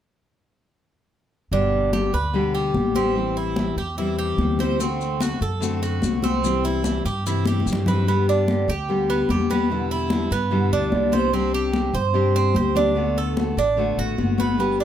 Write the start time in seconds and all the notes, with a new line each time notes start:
1.51 G1 B2 D3 G3 B3 D4 G4, high conga
1.73 high conga
1.93 D3 G3 B3 G4, high conga
2.13 D2 B4, muted steel-string acoustic guitar stroke, high conga
2.33 B2 D3 G3 B3 G4, high conga
2.54 G4, high conga
2.74 A1 D3 G3 B3 G4, high conga
2.95 D3 G3 B3 C4 G4, high conga
3.15 E3 G3 C4 E4, high conga
3.36 E4, high conga
3.56 E3 G3 C4 E4, high conga
3.76 E2 G4, muted steel-string acoustic guitar stroke
3.97 E3 G3 C4 E4, high conga
4.18 G4, high conga
4.38 D2 E3 G3 C4 E4, high conga
4.59 G3 C4 E4 C5, high conga
4.79 D3 A3 C4 F#4, high conga, maracas
5.00 high conga, maracas
5.20 D3 A3 C4 F#4, high conga, maracas
5.41 F#2 A4, muted steel-string acoustic guitar stroke, high conga, maracas
5.60 D3 A3 C4 F#4, high conga, maracas
5.82 F#4, high conga, maracas
6.02 C2 D3 A3 C4 F#4, high conga, maracas
6.22 A3 C4 F#4, high conga, maracas
6.43 C3 E3 G3 C4 E4, high conga, maracas
6.64 E4, high conga, maracas
6.84 E3 G3 C4 E4, high conga, maracas
7.05 G2 G4, muted steel-string acoustic guitar stroke, maracas
7.26 C3 E3 G3 C4 E4, high conga, maracas
7.46 G4, high conga, maracas
7.60 high conga
7.66 G2 E3 G3 C4 E4, maracas
7.73 low conga
7.86 E3 G3 C4 E4 B4, low conga, maracas
8.07 D3 G3 B3 G4, high conga
8.28 D4, high conga
8.47 D3 G3 B3 G4, high conga
8.68 D2 G4, muted steel-string acoustic guitar stroke, high conga
8.88 D3 G3 B3 G4, high conga
9.09 B3, high conga
9.29 E2 D3 G3 B3 G4, high conga
9.50 G3 B3 G4, high conga
9.70 B2 D3 G3 B3 E4, high conga
9.91 E4, high conga
10.10 D3 G3 B3 E4, high conga
10.30 G2 B3, muted steel-string acoustic guitar stroke
10.50 B2 D3 G3 B3 E4, high conga
10.72 D2 D4, high conga
10.92 C2 D3 G3 B3 E4, high conga
11.12 D3 G3 B3 E4 C5, high conga
11.32 C3 G3 C4 D4 G4, high conga
11.53 G4, high conga
11.73 G3 C4 D4 G4, high conga
11.94 G2 C5, muted steel-string acoustic guitar stroke, high conga
12.13 C3 G3 C4 D4 G4, high conga
12.35 C4, high conga
12.54 D2 G3 C4 D4 G4 C5, high conga
12.75 G3 C4 D4 G4, high conga
12.95 D3 A3 B3 F#4, high conga
13.16 A4, high conga
13.37 D3 A3 B3 F#4, high conga
13.57 A1 D4, muted steel-string acoustic guitar stroke
13.77 D3 A3 B3 F#4, high conga
13.98 A1 F#4, high conga
14.17 G1 D3 A3 B3 F#4, high conga
14.38 A3 B3 F#4 B4, high conga
14.57 D3 G3 B3 G4, high conga
14.80 D4, high conga